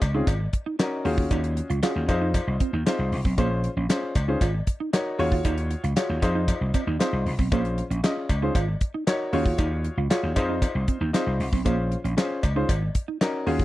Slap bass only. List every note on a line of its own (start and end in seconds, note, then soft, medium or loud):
0.02 0.21 C#2 medium
0.27 0.46 G#1 medium
1.05 1.24 D#2 medium
1.31 1.59 D#2 loud
1.70 1.79 C#2 medium
1.96 2.05 D#2 medium
2.09 2.37 F2 loud
2.47 2.57 C2 medium
2.73 2.83 D#2 medium
2.99 3.09 C2 medium
3.12 3.22 C2 medium
3.25 3.34 B1 medium
3.38 3.66 A#1 loud
3.77 3.86 A#1 medium
4.15 4.34 C#2 medium
4.41 4.60 G#1 medium
5.19 5.38 D#2 medium
5.45 5.73 D#2 loud
5.84 5.93 C#2 medium
6.10 6.19 D#2 medium
6.22 6.51 F2 loud
6.61 6.71 C2 medium
6.87 6.97 D#2 medium
7.13 7.22 C2 medium
7.26 7.35 C2 medium
7.39 7.48 B1 medium
7.52 7.80 A#1 loud
7.91 8.00 A#1 medium
8.30 8.48 C#2 medium
8.55 8.74 G#1 medium
9.33 9.52 D#2 medium
9.59 9.87 D#2 loud
9.97 10.07 C#2 medium
10.23 10.33 D#2 medium
10.36 10.65 F2 loud
10.75 10.85 C2 medium
11.01 11.10 D#2 medium
11.27 11.36 C2 medium
11.40 11.49 C2 medium
11.53 11.62 B1 medium
11.66 11.94 A#1 loud
12.04 12.14 A#1 medium
12.43 12.62 C#2 medium
12.69 12.88 G#1 medium
13.47 13.65 D#2 medium